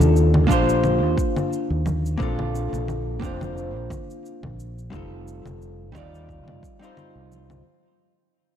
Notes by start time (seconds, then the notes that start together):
Already playing: A#3 D4 F4 G4 A4
0.00 D#2, low conga, shaker
0.16 shaker
0.34 low conga
0.47 A#1 A#3 D4 F4 G4, kick, shaker
0.52 C5
0.69 shaker
0.84 low conga, shaker
1.02 D#2
1.18 kick, shaker
1.36 low conga, shaker
1.53 shaker
1.70 D#2
1.86 high conga, low conga, shaker
2.06 shaker
2.18 A#1 A#3 C4 D4 F4, kick, shaker
2.23 A4
2.39 low conga
2.55 shaker
2.73 A#1, low conga, shaker
2.88 low conga, shaker
3.19 F1 A#3 C4 D4 F4, kick, shaker
3.25 C5
3.41 high conga, low conga, shaker
3.58 shaker
3.75 A#1
3.90 kick, low conga, shaker
4.10 shaker
4.26 shaker
4.43 A#1, kick, low conga
4.60 shaker
4.78 shaker
4.90 F1 G3 C4 D#4 F4, kick, low conga, shaker
4.95 A4
5.28 shaker
5.45 F1, low conga, shaker
5.62 shaker
5.92 D#2 G3 C4 D#4 F4, kick, low conga, shaker
5.97 D5
6.15 shaker
6.29 kick, shaker
6.47 F1, low conga
6.63 kick, shaker
6.79 G3 C4 D#4 F4, shaker
6.85 C5
6.97 low conga, shaker
7.15 C2
7.32 high conga, shaker
7.50 low conga, shaker